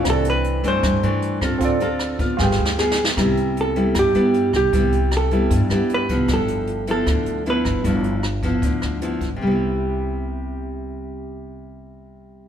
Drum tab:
HH |x--x--x--x--x--x--x--x--|x--x--x--x--------------|x--x--x--x--x--x--x--x--|x--x--x--x--x--x--x--x--|
SD |r-----------r--------r--|------r-----o-o-o-o-o-o-|r-----------r--------r--|------r--------r--------|
BD |o-----------o--------o--|o--------o--o-----------|o-----------o--------o--|o-----------o--------o--|

HH |x--x--x--x--x--x--x--x--|x--x--x--x--x--x--x--x--|------------------------|------------------------|
SD |r-----------r--------r--|------r--------r--------|------------------------|------------------------|
BD |o-----------o--------o--|o--------o--o--------o--|------------------------|------------------------|